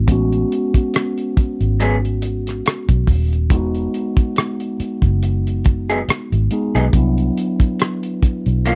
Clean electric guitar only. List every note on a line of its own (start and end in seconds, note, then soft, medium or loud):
1.80 1.94 F#3 medium
1.80 1.95 B3 medium
1.80 1.95 C#4 medium
1.80 1.95 G#4 medium
5.90 5.99 F#3 soft
5.90 5.99 B3 soft
5.90 5.98 D#4 soft
5.90 5.98 G#4 medium
6.75 6.85 F#3 soft
6.75 6.84 B3 medium
6.75 6.84 D#4 medium
6.75 6.84 G#4 medium
8.66 8.75 E3 medium
8.66 8.75 B3 medium
8.66 8.75 D4 medium
8.66 8.75 F#4 medium